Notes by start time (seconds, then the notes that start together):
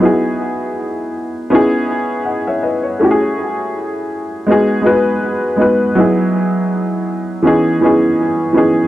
0.00 B3 D#4 E4 F#4
0.05 G#4
1.50 B3 C#4 D#4 E4
1.55 G#4
2.25 D#5 F#5
2.47 C#5 E5
2.63 B4 D#5
2.83 C#5
2.99 A3 C#4 E4 F#4
3.04 G4
3.11 G#4
4.47 G#3 B3 D#4 F#4
4.52 G#4
4.82 G#3 B3 D#4 F#4
4.86 B4
5.56 G#3 B3 D#4 F#4
5.61 B4
5.95 F#3 B3 D#4 E4
6.00 G#4
7.42 E3 B3 C#4 D#4
7.47 G#4
7.81 E3 B3 C#4 D#4
7.86 G#4
8.53 E3 B3 C#4 D#4
8.58 G#4